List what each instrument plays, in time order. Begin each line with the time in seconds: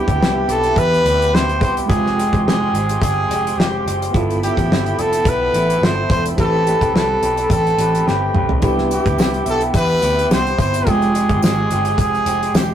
Already playing: reed electric piano B3 D4 E4 G4, trumpet G4, analog synth pad G4 B4 E5 B5
0.06 picked electric bass D2, clean electric guitar B3 E4 G4, kick, closed hi-hat
0.20 picked electric bass C2, clean electric guitar C3 B3 E4 G4, snare
0.34 clean electric guitar B3 E4 G4
0.47 picked electric bass B1, clean electric guitar C3 B3 E4 G4, trumpet A4, closed hi-hat
0.64 clean electric guitar B3 E4 G4, closed hi-hat
0.76 picked electric bass E2, trumpet B4, kick, closed hi-hat
0.94 closed hi-hat
1.04 picked electric bass D2, clean electric guitar C3 B3 E4 G4, closed hi-hat
1.20 clean electric guitar B3 E4 G4, closed hi-hat
1.33 clean electric guitar C3 B3 E4 G4, trumpet C5, snare
1.48 clean electric guitar B3 E4 G4, closed hi-hat
1.61 picked electric bass C2, clean electric guitar C3 B3 E4 G4, trumpet C5, kick, closed hi-hat
1.77 closed hi-hat
1.86 picked electric bass F1, clean electric guitar F3 G#3, reed electric piano G#3 C4 F4, analog synth pad G#3 F5 G5 C6, trumpet G#4, kick
1.90 clean electric guitar C4 G4, reed electric piano G5, closed hi-hat
2.06 snare
2.17 clean electric guitar F3 G#3 C4 G4, closed hi-hat
2.32 picked electric bass E1, clean electric guitar G#3 C4 G4, kick, closed hi-hat
2.45 picked electric bass F1, clean electric guitar F3 G#3 C4 G4, trumpet G#4, snare
2.61 clean electric guitar G#3 C4 G4
2.74 picked electric bass G#1, clean electric guitar F3 G#3 C4 G4, closed hi-hat
2.89 clean electric guitar G#3 C4 G4, closed hi-hat
3.01 picked electric bass G1, trumpet G#4, kick, closed hi-hat
3.29 picked electric bass F1, clean electric guitar F3 G#3 C4 G4, closed hi-hat
3.45 clean electric guitar G#3 C4 G4, closed hi-hat
3.58 picked electric bass F1, clean electric guitar F3 G#3 C4 G4, trumpet G4, snare
3.86 picked electric bass F#1, clean electric guitar F3 G#3 C4 G4, closed hi-hat
4.02 closed hi-hat
4.11 picked electric bass G1, clean electric guitar G2 F3 B3, reed electric piano B3 E4 F4, analog synth pad E5 G5 B5, kick
4.15 clean electric guitar E4, analog synth pad A4, reed electric piano A4, closed hi-hat
4.30 closed hi-hat
4.42 clean electric guitar G2 F3 B3 E4, trumpet G4, closed hi-hat
4.57 picked electric bass A1, clean electric guitar F3 B3 E4, kick, closed hi-hat
4.70 picked electric bass G1, clean electric guitar G2 F3 B3 E4, snare
4.85 clean electric guitar F3 B3 E4, closed hi-hat
4.98 picked electric bass F1, clean electric guitar G2 F3 B3 E4, trumpet A4, closed hi-hat
5.13 clean electric guitar F3 B3 E4, closed hi-hat
5.25 picked electric bass B1, trumpet B4, kick, closed hi-hat
5.53 picked electric bass A1, clean electric guitar G2 F3 B3 E4, closed hi-hat
5.69 clean electric guitar F3 B3 E4, closed hi-hat
5.81 picked electric bass G1, clean electric guitar G2 F3 B3 E4, trumpet C5, snare
5.97 clean electric guitar F3 B3 E4
6.09 picked electric bass E1, clean electric guitar G2 F3 B3 E4, trumpet C5, kick, closed hi-hat
6.26 closed hi-hat
6.36 picked electric bass A1, clean electric guitar A3 C4 G4 B4, reed electric piano C4 E4 G4, analog synth pad C4 G5, kick, closed hi-hat
6.40 trumpet A4, reed electric piano B4
6.65 clean electric guitar A3 C4 G4 B4, closed hi-hat
6.80 picked electric bass B1, clean electric guitar C4 G4 B4, kick, closed hi-hat
6.94 picked electric bass C2, clean electric guitar A3 C4 G4 B4, trumpet A4, snare
7.08 clean electric guitar C4 G4 B4
7.22 picked electric bass B1, clean electric guitar A3 C4 G4 B4, closed hi-hat
7.37 clean electric guitar C4 G4 B4, closed hi-hat
7.50 picked electric bass A1, trumpet A4, kick, closed hi-hat
7.67 closed hi-hat
7.77 picked electric bass A1, clean electric guitar A3 C4 G4 B4, closed hi-hat
7.93 clean electric guitar C4 G4 B4, closed hi-hat
8.06 picked electric bass G1, clean electric guitar A3 C4 G4 B4, trumpet G4, snare
8.34 picked electric bass B1, clean electric guitar A3 C4 G4 B4, mid tom
8.49 floor tom
8.60 picked electric bass C2, clean electric guitar C3 B3 E4 G4, analog synth pad B3 E5, reed electric piano D4 E4 G4, kick, closed hi-hat, tambourine
8.65 reed electric piano B4
8.78 snare
8.89 clean electric guitar C3 B3 E4 G4, closed hi-hat, tambourine
8.94 trumpet G4
9.04 picked electric bass D2, clean electric guitar B3 E4 G4, kick, closed hi-hat
9.17 picked electric bass C2, clean electric guitar C3 B3 E4 G4, snare, tambourine
9.33 clean electric guitar B3 E4 G4, closed hi-hat
9.45 picked electric bass B1, clean electric guitar C3 B3 E4 G4, closed hi-hat, tambourine
9.50 trumpet A4
9.61 clean electric guitar B3 E4 G4, closed hi-hat
9.74 picked electric bass E2, trumpet B4, kick, closed hi-hat
10.01 picked electric bass D2, clean electric guitar C3 B3 E4 G4, closed hi-hat, tambourine
10.17 clean electric guitar B3 E4 G4, closed hi-hat
10.29 picked electric bass C2, clean electric guitar C3 B3 E4 G4, trumpet C5, snare, tambourine
10.44 clean electric guitar B3 E4 G4, closed hi-hat
10.58 picked electric bass G1, clean electric guitar C3 B3 E4 G4, trumpet C5, kick, closed hi-hat, tambourine
10.74 closed hi-hat
10.84 picked electric bass F1, clean electric guitar F3 G#3 C4 G4, analog synth pad G#3 F5 G5, reed electric piano C4 F4 G5, kick, closed hi-hat, tambourine
10.89 reed electric piano G#3, trumpet G#4
11.02 closed hi-hat
11.13 clean electric guitar F3 G#3 C4 G4, closed hi-hat, tambourine
11.29 picked electric bass G1, clean electric guitar G#3 C4 G4, kick, closed hi-hat
11.42 picked electric bass G#1, clean electric guitar F3 G#3 C4 G4, trumpet G#4, snare, tambourine
11.57 clean electric guitar G#3 C4 G4
11.69 picked electric bass G1, clean electric guitar F3 G#3 C4 G4, closed hi-hat, tambourine
11.85 clean electric guitar G#3 C4 G4, closed hi-hat
11.98 picked electric bass F1, trumpet G#4, kick, closed hi-hat, tambourine
12.14 closed hi-hat
12.25 picked electric bass F1, clean electric guitar F3 G#3 C4 G4, closed hi-hat, tambourine
12.41 clean electric guitar G#3 C4 G4, closed hi-hat
12.54 picked electric bass E1, clean electric guitar F3 G#3 C4 G4, trumpet G4, snare, tambourine
12.69 clean electric guitar C4 G4